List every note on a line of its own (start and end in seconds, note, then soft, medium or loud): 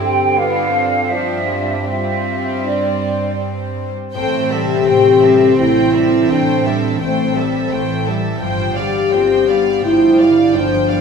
0.00 3.37 G2 soft
0.00 3.90 G2 medium
0.00 1.11 D3 medium
0.00 3.41 G3 soft
0.00 0.36 C4 soft
0.00 0.37 C4 medium
0.00 3.46 D4 soft
0.00 3.50 G4 soft
0.00 0.36 G4 medium
0.00 0.34 G5 medium
0.37 0.74 B3 medium
0.37 1.11 D4 medium
0.37 1.10 F4 medium
0.37 1.11 F5 medium
0.73 1.86 C4 soft
1.10 1.49 F3 medium
1.10 1.86 D4 soft
1.10 1.85 F4 medium
1.10 1.87 E5 medium
1.49 1.86 G3 soft
1.86 3.90 G3 medium
1.86 3.94 C4 soft
1.86 3.91 C4 medium
1.86 2.62 F4 medium
1.86 2.63 E5 medium
2.65 3.40 D4 soft
2.65 3.41 D5 medium
4.14 4.78 A1 medium
4.14 6.27 A2 medium
4.14 4.49 A3 soft
4.14 6.97 C4 medium
4.14 4.48 C5 medium
4.14 4.48 G5 medium
4.38 4.86 E3 soft
4.50 4.88 G3 soft
4.50 5.55 G4 medium
4.50 4.87 A4 soft
4.50 4.87 E5 soft
4.62 8.52 C3 soft
4.86 5.50 A1 medium
4.86 5.57 E3 soft
4.86 5.23 A3 soft
4.86 5.22 C5 soft
4.86 5.23 G5 soft
5.11 7.22 E4 soft
5.21 5.59 G3 soft
5.21 5.58 A4 soft
5.21 5.58 E5 soft
5.34 9.24 A3 soft
5.56 6.21 A1 medium
5.56 6.04 E3 soft
5.56 5.92 A3 soft
5.56 6.29 E4 medium
5.56 5.92 C5 soft
5.56 5.90 G5 soft
5.92 6.30 G3 soft
5.92 6.29 A4 soft
5.92 6.28 E5 soft
6.05 6.75 E3 soft
6.28 6.92 A1 medium
6.28 8.44 A2 medium
6.28 6.65 A3 soft
6.28 6.99 D4 medium
6.28 6.65 C5 soft
6.28 6.65 G5 soft
6.64 7.01 G3 soft
6.64 7.00 A4 soft
6.64 7.00 E5 soft
6.76 7.70 E3 soft
7.00 7.63 A1 medium
7.00 7.36 A3 medium
7.00 7.34 A3 soft
7.00 8.06 C4 medium
7.00 7.33 C5 soft
7.00 7.33 G5 soft
7.24 8.45 E4 soft
7.35 7.72 G3 soft
7.35 7.71 A4 soft
7.35 7.71 E5 soft
7.70 8.33 A1 medium
7.70 8.17 E3 soft
7.70 8.41 E3 medium
7.70 8.07 A3 soft
7.70 8.06 C5 soft
7.70 8.07 G5 soft
8.04 8.43 G3 soft
8.04 8.41 A4 soft
8.04 8.42 E5 soft
8.18 8.45 E3 soft
8.41 9.04 G1 medium
8.41 10.53 G2 medium
8.41 8.75 F3 soft
8.41 9.13 G3 soft
8.41 8.74 C5 soft
8.41 8.75 G5 medium
8.64 9.81 D3 soft
8.75 9.13 G3 soft
8.75 9.81 G4 medium
8.75 9.12 D5 soft
8.75 9.12 F5 soft
8.87 10.05 G3 soft
9.12 9.75 G1 medium
9.12 9.49 F3 soft
9.12 9.48 C4 medium
9.12 11.01 D4 soft
9.12 9.48 C5 soft
9.12 9.48 G5 soft
9.35 11.01 F4 soft
9.47 9.85 G3 soft
9.47 9.83 B3 medium
9.47 9.83 D5 soft
9.47 9.83 F5 soft
9.82 10.46 G1 medium
9.82 10.29 D3 soft
9.82 10.20 A3 medium
9.82 10.54 E4 medium
9.82 10.17 C5 soft
9.82 10.17 G5 soft
9.87 10.18 F3 soft
10.07 10.76 G3 soft
10.19 10.55 G3 soft
10.19 10.55 D5 soft
10.19 10.55 F5 soft
10.30 11.00 D3 soft
10.54 11.01 G1 medium
10.54 11.01 G2 medium
10.54 10.90 F3 soft
10.54 11.01 F3 medium
10.54 11.01 D4 medium
10.54 10.90 C5 soft
10.54 10.90 G5 medium
10.78 11.01 G3 soft
10.89 11.01 G3 soft
10.89 11.01 D5 soft
10.89 11.01 F5 soft